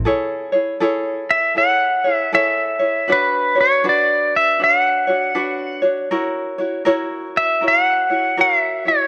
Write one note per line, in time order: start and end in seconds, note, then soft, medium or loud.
0.05 0.53 E4 medium
0.05 0.52 G#4 medium
0.05 0.52 A4 medium
0.05 0.51 C#5 medium
0.52 0.80 E4 soft
0.52 0.80 G#4 medium
0.52 0.80 C#5 medium
0.80 1.55 E4 medium
0.80 1.55 G#4 medium
0.80 1.53 A4 medium
0.80 1.56 C#5 loud
1.31 1.57 E5 medium
1.55 2.04 E4 medium
1.55 2.04 G#4 medium
1.55 2.03 A4 medium
1.55 2.03 C#5 medium
1.55 2.15 F#5 medium
2.04 2.32 E4 soft
2.04 2.32 G#4 soft
2.04 2.32 C#5 soft
2.15 2.34 E5 medium
2.32 2.80 E4 medium
2.32 2.79 G#4 medium
2.32 2.79 A4 medium
2.32 2.78 C#5 medium
2.32 3.11 E5 medium
2.79 3.08 E4 soft
2.79 3.08 G#4 soft
2.79 3.08 C#5 medium
3.08 3.56 D4 medium
3.08 3.55 F#4 medium
3.08 3.55 B4 medium
3.08 3.54 C#5 medium
3.12 3.59 B4 medium
3.55 3.83 D4 soft
3.55 3.84 F#4 soft
3.55 3.84 C#5 medium
3.61 3.87 C#5 medium
3.84 4.58 D4 loud
3.84 4.60 F#4 medium
3.84 4.58 B4 medium
3.89 4.35 D5 medium
4.36 4.63 E5 medium
4.59 5.07 D4 medium
4.59 5.08 F#4 medium
4.59 5.07 B4 medium
4.59 5.06 C#5 medium
4.64 5.81 F#5 medium
5.07 5.34 D4 soft
5.07 5.34 F#4 medium
5.07 5.35 C#5 soft
5.35 5.83 D4 medium
5.35 5.81 F#4 medium
5.35 5.83 B4 medium
5.35 5.81 C#5 medium
5.82 6.11 D4 soft
5.82 6.10 F#4 medium
5.82 6.10 C#5 medium
6.11 6.58 E4 medium
6.11 6.59 F#4 medium
6.11 6.58 A#4 medium
6.11 6.57 C#5 medium
6.58 6.85 E4 medium
6.58 6.85 F#4 soft
6.58 6.85 C#5 medium
6.85 7.61 E4 loud
6.85 7.62 F#4 loud
6.85 7.60 A#4 loud
6.85 7.62 C#5 loud
7.37 7.65 E5 medium
7.61 8.10 E4 medium
7.61 8.10 F#4 medium
7.61 8.09 A#4 soft
7.61 8.09 C#5 medium
7.68 8.41 F#5 loud
8.10 8.37 E4 soft
8.10 8.37 F#4 soft
8.10 8.37 C#5 medium
8.37 8.85 E4 medium
8.37 8.86 F#4 medium
8.37 8.85 A#4 medium
8.37 8.84 C#5 medium
8.37 8.59 F5 loud
8.59 8.89 E5 loud
8.85 9.07 E4 soft
8.85 9.07 F#4 soft
8.85 9.07 C#5 medium